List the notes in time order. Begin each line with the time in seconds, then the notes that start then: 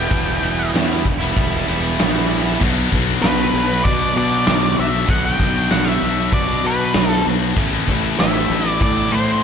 Already playing: B3 E4 G4 G5
0.10 E1 E3 G3 B3 E4, kick, ride
0.42 E1 E3 G3 B3 E4, ride
0.57 G3 B3 E4
0.74 E2 E3 G3 B3 E4, snare, ride
0.89 G3 B3 E4
1.04 E1, muted overdriven electric guitar stroke, muted distorted electric guitar stroke, kick, ride
1.20 G3 B3 E4
1.37 E1, kick, ride
1.50 G3 B3 E4
1.67 E1 E3 G3 B3 E4, ride
1.82 G3 B3 E4
1.97 A#1 E3 G3 B3 E4, snare, ride
2.15 G3 B3 E4
2.29 E3 G3 B3 E4, ride
2.45 G3 B3 E4
2.60 B1 B2 F#3 B3 D4 F#4, kick, crash
2.91 B1 F#3 B3 D4 F#4, kick
3.06 B3 D4 F#4
3.22 B1 B2 F#3 B3 D4 F#4 B4, snare, open hi-hat
3.38 B3 D4 F#4
3.52 B1 F#3 B3 D4 F#4
3.69 B3 D4 F#4
3.84 B2 D5, kick, open hi-hat
3.99 B3 D4 F#4
4.15 B2 F#3 B3 D4 F#4 D5
4.46 B1 B2 F#3 B3 D4 F#4, snare, open hi-hat
4.78 B1 F#3 B3 D4 F#4 E5
4.93 B3 D4 F#4
5.08 B1 B2 F#3 B3 D4 F#4 F#5, kick, open hi-hat
5.26 G5
5.39 B1 F#3 B3 D4 F#4, kick
5.54 B3 D4 F#4
5.70 B1 B2 F#3 B3 D4 F#4 F#5, snare, open hi-hat
5.85 B3 D4 F#4 E5
6.01 B1 F#3 B3 D4 F#4
6.17 B3 D4 F#4
6.31 B2 D5, kick, open hi-hat
6.49 B3 D4 F#4
6.63 B2 F#3 B3 D4 F#4 B4
6.94 B1 B2 F#3 B3 D4 F#4, snare, open hi-hat
7.10 A4
7.26 B1 F#3 B3 D4 F#4
7.42 B3 D4 F#4
7.56 A1 A2 E3 A3 B3 E4 A4, kick, crash
7.87 A1 A3 B3 E4 A4, kick
8.04 B3 E4 A4
8.18 A1 A3 B3 E4 A4 E5, snare, open hi-hat
8.34 B3 E4 A4
8.49 A1 A3 B3 E4 A4
8.65 B3 E4 A4 D5
8.81 A2 D5, kick, open hi-hat
8.97 B3 E4 A4
9.12 A2 A3 B3 E4 A4 C5